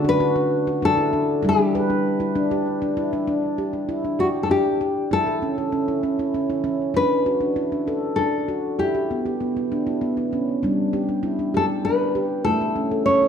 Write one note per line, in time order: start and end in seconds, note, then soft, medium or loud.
0.05 0.20 D4 medium
0.09 0.85 B4 loud
0.20 0.36 F#4 medium
0.36 0.67 D4 medium
0.67 0.82 F#4 medium
0.82 0.98 D4 medium
0.82 1.47 A4 medium
0.97 1.13 E4 medium
1.13 1.44 D4 medium
1.43 1.72 G3 medium
1.43 1.59 E4 medium
1.49 2.95 G4 medium
1.59 1.74 D4 medium
1.75 1.90 B4 medium
1.90 2.20 D4 medium
2.20 2.35 E4 medium
2.35 2.51 D4 medium
2.51 2.82 G4 medium
2.82 2.97 D4 medium
2.97 3.12 E4 medium
3.13 3.26 D4 medium
3.27 3.58 D4 medium
3.58 3.74 G4 medium
3.73 3.88 D4 medium
3.89 4.04 E4 medium
4.05 4.19 D4 medium
4.19 4.26 F#4 medium
4.19 4.50 G4 medium
4.43 4.50 A4 medium
4.50 4.80 D4 medium
4.50 5.12 G4 medium
4.81 5.11 G4 medium
5.11 5.27 E4 medium
5.11 6.00 A4 medium
5.27 5.42 A4 medium
5.42 5.58 C#4 medium
5.58 5.73 A4 medium
5.72 5.88 C#4 medium
5.88 6.03 E4 medium
6.03 6.19 C#4 medium
6.19 6.34 E4 medium
6.34 6.50 C#4 medium
6.50 6.65 E4 medium
6.64 6.95 C#4 medium
6.94 7.25 D4 medium
6.94 8.22 B4 medium
7.26 7.42 F#4 medium
7.41 7.56 D4 medium
7.56 7.72 E4 medium
7.72 7.87 D4 medium
7.88 8.18 A4 medium
8.16 8.49 D4 medium
8.16 8.79 A4 medium
8.48 8.79 F#4 medium
8.79 8.94 E4 medium
8.79 10.28 G4 medium
8.95 9.10 G4 medium
9.11 9.26 B3 medium
9.26 9.40 G4 medium
9.40 9.56 B3 medium
9.57 9.71 E4 medium
9.72 9.87 D4 medium
9.87 10.01 E4 medium
10.01 10.17 B3 medium
10.17 10.32 E4 soft
10.33 10.63 C#4 medium
10.63 11.81 G3 medium
10.63 10.93 D4 medium
10.93 11.09 G4 medium
11.09 11.24 D4 soft
11.23 11.39 E4 medium
11.39 11.54 D4 soft
11.54 11.85 G4 medium
11.54 11.65 A4 medium
11.85 12.15 D4 medium
11.85 12.44 B4 medium
12.15 12.46 G4 medium
12.44 13.28 A3 medium
12.44 12.61 E4 medium
12.44 13.05 A4 medium
12.61 12.76 A4 soft
12.76 12.91 C#4 medium
12.91 13.07 A4 medium
13.06 13.22 C#4 medium
13.06 13.28 C#5 medium
13.22 13.28 E4 medium